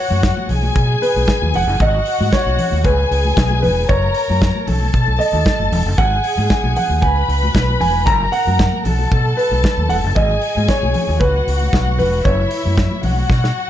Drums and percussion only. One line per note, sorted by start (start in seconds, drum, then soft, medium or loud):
0.11 high conga medium
0.23 kick loud
0.23 snare loud
0.23 closed hi-hat medium
0.37 muted conga soft
0.37 high conga medium
0.49 open hi-hat medium
0.49 low conga medium
0.63 high conga medium
0.76 kick loud
0.76 closed hi-hat medium
0.76 muted conga soft
1.03 open hi-hat medium
1.17 high conga medium
1.27 kick loud
1.27 snare loud
1.27 closed hi-hat medium
1.42 muted conga soft
1.42 high conga medium
1.54 open hi-hat medium
1.54 low conga medium
1.80 kick loud
1.80 closed hi-hat medium
1.80 muted conga soft
2.06 open hi-hat medium
2.21 high conga medium
2.33 kick loud
2.33 snare loud
2.33 closed hi-hat medium
2.47 muted conga soft
2.47 high conga medium
2.59 open hi-hat medium
2.59 low conga medium
2.72 high conga medium
2.84 kick loud
2.84 closed hi-hat medium
2.84 muted conga soft
3.12 open hi-hat medium
3.25 high conga medium
3.37 kick loud
3.37 snare loud
3.37 closed hi-hat medium
3.51 muted conga soft
3.51 high conga medium
3.62 open hi-hat medium
3.62 low conga medium
3.89 kick loud
3.89 closed hi-hat medium
4.03 muted conga soft
4.14 open hi-hat medium
4.30 high conga medium
4.42 kick loud
4.42 snare loud
4.42 closed hi-hat medium
4.55 muted conga soft
4.55 high conga medium
4.67 open hi-hat medium
4.67 low conga medium
4.81 high conga medium
4.94 kick loud
4.94 closed hi-hat medium
5.08 muted conga soft
5.21 open hi-hat medium
5.35 high conga medium
5.45 kick loud
5.45 snare loud
5.45 closed hi-hat medium
5.45 muted conga soft
5.60 high conga medium
5.72 open hi-hat medium
5.72 low conga medium
5.98 kick loud
5.98 closed hi-hat medium
5.98 muted conga soft
6.24 open hi-hat medium
6.38 high conga medium
6.50 kick loud
6.50 snare loud
6.50 closed hi-hat medium
6.64 high conga medium
6.76 open hi-hat medium
6.76 low conga medium
6.89 high conga medium
7.02 kick loud
7.02 closed hi-hat medium
7.02 muted conga soft
7.16 muted conga soft
7.29 open hi-hat medium
7.43 high conga medium
7.55 kick loud
7.55 snare loud
7.55 closed hi-hat medium
7.68 high conga medium
7.80 open hi-hat medium
7.80 low conga medium
8.07 kick loud
8.07 closed hi-hat medium
8.07 muted conga soft
8.21 muted conga soft
8.33 open hi-hat medium
8.47 high conga medium
8.59 kick loud
8.59 snare loud
8.59 closed hi-hat medium
8.73 muted conga soft
8.73 high conga medium
8.85 open hi-hat medium
8.85 low conga medium
8.99 high conga medium
9.11 kick loud
9.11 closed hi-hat medium
9.11 muted conga soft
9.39 open hi-hat medium
9.52 high conga medium
9.64 kick loud
9.64 snare loud
9.64 closed hi-hat medium
9.64 muted conga soft
9.77 high conga medium
9.89 open hi-hat medium
9.89 low conga medium
10.16 kick loud
10.16 closed hi-hat medium
10.30 muted conga soft
10.42 open hi-hat medium
10.57 high conga medium
10.68 kick loud
10.68 snare loud
10.68 closed hi-hat medium
10.82 muted conga soft
10.82 high conga medium
10.94 open hi-hat medium
10.94 low conga loud
11.08 high conga medium
11.21 kick loud
11.21 closed hi-hat medium
11.21 muted conga soft
11.34 muted conga soft
11.48 open hi-hat medium
11.61 high conga medium
11.73 kick loud
11.73 snare loud
11.73 closed hi-hat medium
11.86 muted conga soft
11.86 high conga medium
11.98 open hi-hat medium
11.98 low conga medium
12.25 kick loud
12.25 closed hi-hat medium
12.25 muted conga soft
12.39 muted conga soft
12.51 open hi-hat medium
12.65 high conga medium
12.78 kick loud
12.78 snare loud
12.78 closed hi-hat medium
12.78 muted conga soft
12.91 high conga medium
13.03 open hi-hat medium
13.03 low conga loud
13.16 high conga medium
13.30 kick loud
13.30 snare medium
13.43 snare medium
13.43 muted conga soft